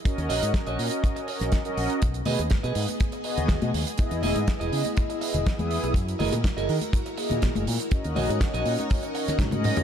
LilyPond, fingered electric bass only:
\new Staff \with { instrumentName = "Fingered electric bass" } { \clef bass \time 4/4 \key dis \phrygian \tempo 4 = 122 r16 dis,16 ais,,16 gis,16 r16 ais,,16 ais,16 r4 ais,,16 r8 ais,,16 r16 | b,,8 b,16 dis,16 r16 b,16 gis,16 r4 dis,8 b,16 dis,16 r16 | r16 e,16 e,,16 gis,16 r16 e,,16 cis16 r4 e,,16 r16 e,8 b,,16 | fis,8 fis,,16 ais,16 r16 fis,,16 dis16 r4 ais,8 fis,,16 ais,16 r16 |
r16 dis,16 ais,,16 gis,16 r16 ais,,16 ais,16 r4 r16 gis,8. r16 | }